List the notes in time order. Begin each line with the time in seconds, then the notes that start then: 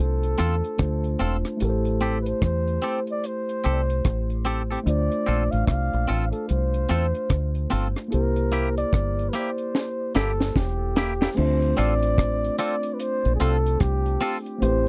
Already playing: A3 D4 F4 C5
0.00 C2 A4
0.23 closed hi-hat
0.38 E2 C4 F4 A4, cross-stick, closed hi-hat
0.64 closed hi-hat
0.78 D2 A3 D4 F4 C5, kick, cross-stick, closed hi-hat
1.04 closed hi-hat
1.19 E1 C4 F4 A4, closed hi-hat
1.45 cross-stick, closed hi-hat
1.57 A3 E4, closed hi-hat
1.61 A1 G4 A4 A#4
1.69 C5
1.85 closed hi-hat
2.01 C4 G4 A4, closed hi-hat
2.22 B4
2.26 C5, closed hi-hat
2.42 E2 C5, kick, cross-stick, closed hi-hat
2.68 closed hi-hat
2.82 C4 G4 A4, closed hi-hat
3.07 D5, closed hi-hat
3.24 C5, closed hi-hat
3.49 closed hi-hat
3.64 C2 C4 G4 A4, closed hi-hat
3.90 closed hi-hat
4.05 A1, kick, cross-stick, closed hi-hat
4.30 closed hi-hat
4.45 C4 G4 A4, closed hi-hat
4.71 C4 G4 A4, closed hi-hat
4.83 D2 A3 D4 F4 D5, closed hi-hat
4.90 C5
5.12 closed hi-hat
5.26 A#1 C4 F4 A4, closed hi-hat
5.51 A1 F5, closed hi-hat
5.67 C2 F5, kick, cross-stick, closed hi-hat
5.93 A#1, closed hi-hat
6.08 A1 C4 F4 A4, closed hi-hat
6.31 A4, closed hi-hat
6.48 C2 C5, closed hi-hat
6.74 closed hi-hat
6.89 E2 C4 F4 A4, cross-stick, closed hi-hat
7.15 closed hi-hat
7.30 D2, kick, cross-stick, closed hi-hat
7.55 closed hi-hat
7.70 G1 C4 F4 A4, closed hi-hat
7.96 cross-stick, closed hi-hat
8.08 A#3 E4 A#4, closed hi-hat
8.13 C2 G4 C5
8.36 closed hi-hat
8.52 A#3 E4 G4, closed hi-hat
8.77 D5, closed hi-hat
8.93 G1, kick, cross-stick, closed hi-hat
9.19 closed hi-hat
9.29 A#3 B4
9.34 E4 G4 C5, closed hi-hat
9.58 closed hi-hat
9.75 snare
10.15 G1 A#3 E4 G4 A4, snare
10.41 snare
10.56 E1 G4, kick, snare
10.96 A#3 E4 G4, snare
11.21 A#3 E4 G4, snare
11.35 D2 A3 C4 D4 C5, crash
11.39 F4 C5
11.62 closed hi-hat
11.77 A1 C4 F4 A4 D5, closed hi-hat
12.03 closed hi-hat
12.18 kick, cross-stick, closed hi-hat
12.44 closed hi-hat
12.59 C4 F4 A4 D5, closed hi-hat
12.83 closed hi-hat
12.94 B4
13.00 C5, closed hi-hat
13.25 A#1, closed hi-hat
13.35 G#4
13.40 C2 C4 F4 A4, closed hi-hat
13.66 closed hi-hat
13.80 C2 G4, kick, cross-stick, closed hi-hat
14.06 closed hi-hat
14.21 C4 F4 A4, open hi-hat
14.46 closed hi-hat
14.58 A1 A3 C4 E4 C5, closed hi-hat
14.63 G4 B4
14.71 C5